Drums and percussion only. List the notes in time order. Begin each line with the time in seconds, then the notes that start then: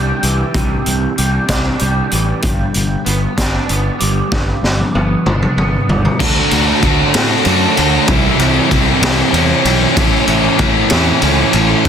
0.23 closed hi-hat
0.54 kick, closed hi-hat
0.86 closed hi-hat
1.18 closed hi-hat
1.48 kick, snare, closed hi-hat
1.79 closed hi-hat
2.11 closed hi-hat
2.42 kick, closed hi-hat
2.74 closed hi-hat
3.06 closed hi-hat
3.37 kick, snare, closed hi-hat
3.69 closed hi-hat
4.00 closed hi-hat
4.32 kick, snare
4.64 snare
4.79 high tom
4.95 high tom
5.26 mid tom
5.42 mid tom
5.58 mid tom
5.89 floor tom
6.05 floor tom
6.20 kick, crash
6.51 ride
6.83 kick, ride
7.14 snare, ride
7.45 ride
7.77 ride
8.08 kick, ride
8.39 ride
8.71 kick, ride
9.03 snare, ride
9.34 ride
9.65 ride
9.97 kick, ride
10.28 ride
10.59 kick, ride
10.90 snare, ride
11.22 ride
11.53 ride
11.85 kick, ride